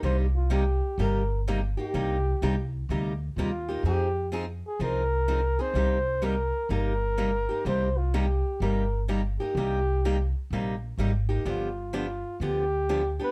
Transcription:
X:1
M:4/4
L:1/8
Q:"Swing" 1/4=126
K:Cm
V:1 name="Flugelhorn"
c F G2 B2 z G- | G3 z3 F2 | G2 z A B3 c- | c2 B2 B4 |
c F G2 B2 z G- | G3 z4 z | F2 F2 G3 =B |]
V:2 name="Steel-string acoustic guitar"
[C,G,B,EG] z [C,G,B,EG] z [C,G,B,EG] z [C,G,B,EG] [B,EG] | [C,G,B,EG] z [C,G,B,EG] z [C,G,B,EG] z [C,G,B,EG] [B,EG] | [F,CEA] z [F,CEA] z [F,CEA] z [F,CEA] [CEA] | [C,G,B,EG] z [C,G,B,EG] z [C,G,B,EG] z [C,G,B,EG] [B,EG] |
[C,G,B,EG] z [C,G,B,EG] z [C,G,B,EG] z [C,G,B,EG] [B,EG] | [C,G,B,EG] z [C,G,B,EG] z [C,G,B,EG] z [C,G,B,EG] [B,EG] | [D,F,=B,DG] z [D,F,B,DG] z [D,F,B,DG] z [D,F,B,DG] [B,DG] |]
V:3 name="Upright bass" clef=bass
C,,4 G,,,4 | C,,2 C,,2 D,,2 E,,2 | F,,4 C,,4 | C,,4 G,,,4 |
C,,4 G,,,4 | C,,4 B,,,2 A,,,2 | G,,,4 D,,4 |]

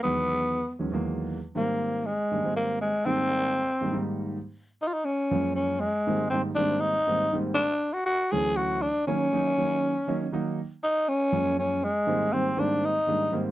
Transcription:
X:1
M:6/8
L:1/16
Q:3/8=80
K:G#dor
V:1 name="Tenor saxophone"
B,6 z6 | A,4 G,4 A,2 G,2 | ^B,8 z4 | z2 D/2 E/2 D C4 C2 G,2- |
G,2 ^B,2 =D2 ^D4- D/2 z3/2 | =D3 F F2 G2 F2 D2 | C8- C2 z2 | z2 D2 C4 C2 G,2- |
G,2 ^B,2 =D2 ^D4- D/2 z3/2 |]
V:2 name="Grand piano"
z12 | z12 | z12 | z12 |
z12 | z12 | z8 d2 f2 | z12 |
z12 |]
V:3 name="Grand piano" clef=bass
[=E,,D,F,G,B,]4 z2 [E,,D,F,G,C] [E,,D,F,G,A,]3 z2 | [G,,D,=G,A,^B,]4 z2 [^G,,D,=G,A,=D] [^G,,^D,=G,A,B,]3 z2 | [G,,D,=G,A,D]4 z2 [^G,,D,=G,A,D] [^G,,D,=G,A,D]3 z2 | z6 [F,,E,G,A,C]4 z2 |
[G,,D,=G,A,^B,] z [^G,,D,=G,A,D] z [^G,,D,=G,A,B,]3 z [^G,,D,=G,A,B,] z [^G,,D,=G,A,B,]2 | z6 [=D,,=E,F,=A,C]4 z2 | [D,F,A,C] z [D,F,A,D] z [D,F,A,C]3 z [D,F,A,C] z [D,F,A,D]2 | z6 [F,,E,G,A,C]4 z2 |
[G,,D,=G,A,^B,] z [^G,,D,=G,A,B,] z [^G,,D,=G,A,B,]3 z [^G,,D,=G,A,=D] z [^G,,^D,=G,A,B,]2 |]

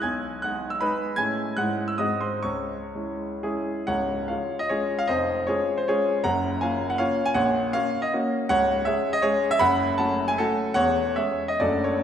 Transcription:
X:1
M:3/4
L:1/16
Q:1/4=154
K:C#m
V:1 name="Grand piano"
[gg']4 [ff']3 e' [Bb]4 | [gg']4 [ff']3 e' [dd']2 [^B^b]2 | [cc']8 [EG]4 | [K:Db] [dg]4 [df]3 e [Ad]3 f |
[ce]4 [Ad]3 c [Ad]4 | [gb]4 [fa]3 g [df]3 a | [dg]4 [df]3 e z4 | [K:C#m] [cf]4 [ce]3 d [Gc]3 e |
[fb]4 [fa]3 g [FA]4 | [cf]4 [ce]3 d [A=d]2 [Ac]2 |]
V:2 name="Grand piano"
B,,,4 [G,DG]4 [G,DG]4 | [A,,G,CE]4 [G,,G,CE]4 [G,,G,^B,F]4 | C,,4 [G,CE]4 [G,C]4 | [K:Db] [D,,,D,,]4 [A,DF]4 [A,DF]4 |
[F,,,F,,]4 [A,DF]4 [A,DF]4 | [G,,,G,,]4 [B,DF]4 [B,DF]4 | [B,,,B,,]4 [B,DG]4 [B,DG]4 | [K:C#m] [C,,,C,,]4 [G,CG]4 [G,C]4 |
[F,,,F,,]4 [A,CF]4 [A,C]4 | [E,,,E,,]4 [G,CG]4 [F,,,F,,A,=DF]4 |]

